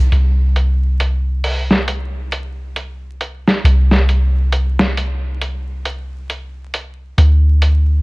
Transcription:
0.12 808-style bass C2, closed hi-hat
0.56 closed hi-hat
1.00 closed hi-hat
1.44 open hi-hat
1.71 snare
1.88 closed hi-hat
2.32 closed hi-hat
2.76 closed hi-hat
3.21 closed hi-hat
3.47 snare
3.64 808-style bass C2, closed hi-hat
3.91 snare
4.09 closed hi-hat
4.52 closed hi-hat
4.79 snare
4.97 closed hi-hat
5.41 closed hi-hat
5.85 closed hi-hat
6.30 closed hi-hat
6.74 closed hi-hat
7.18 808-style bass D2, closed hi-hat
7.62 closed hi-hat

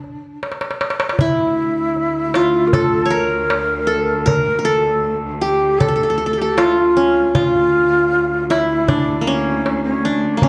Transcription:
Already playing: ney D4, qanun D4
0.04 darbuka ka
0.43 darbuka tek
0.52 darbuka ka
0.61 darbuka tek
0.71 darbuka ka
0.81 darbuka tek
0.90 darbuka ka
1.00 darbuka tek
1.09 ney F4, darbuka ka
1.19 cello section D2, ney E4, qanun E4, darbuka dum
1.96 darbuka ka
2.34 qanun F4, darbuka tek
2.67 ney A#4
2.73 qanun A4, ney A4, darbuka dum
3.06 qanun C#5
3.10 qanun A#4, ney A#4, darbuka ka
3.50 darbuka tek
3.87 qanun A4, darbuka ka
4.26 qanun A#4, ney A#4, darbuka dum
4.59 qanun A#4
4.65 qanun A4, ney A4
5.04 darbuka ka
5.41 ney G4, qanun G4
5.79 ney A4, qanun A4, darbuka dum
5.88 qanun A4
5.96 qanun A4
6.03 qanun A4
6.10 qanun A4
6.18 qanun A4, darbuka ka
6.26 qanun A4
6.33 qanun A4
6.38 ney G4, qanun A4
6.57 ney F4, qanun F4, darbuka tek
6.64 ney E4
6.71 ney F4
6.96 qanun C#4, darbuka ka
7.33 cello section D2, ney F4, qanun F4, darbuka dum
8.13 darbuka ka
8.49 ney E4, qanun E4, darbuka tek
8.88 ney D4, qanun D4, darbuka dum
9.19 qanun A#3, ney D4
9.26 ney C#4, qanun C#4, darbuka ka
9.66 darbuka tek
9.84 ney C#4
10.04 qanun D4, darbuka ka
10.37 qanun A#3
10.42 ney C#4, qanun C#4, darbuka dum

